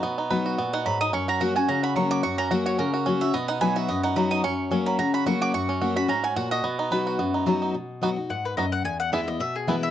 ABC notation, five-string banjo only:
X:1
M:4/4
L:1/8
Q:"Swing" 1/4=218
K:B
V:1 name="Five-string banjo"
[B,DF] D B F B, D F, D | C F F F C F F, F | F C F F C F C F | B, D B F B, D F, D |
C2 C F, F F F F | F C F F C F F F | B, D B F B, D F, D | z2 [B,DF] z3 [B,DF] z |
z2 [B,EG] z3 [B,EG] z |]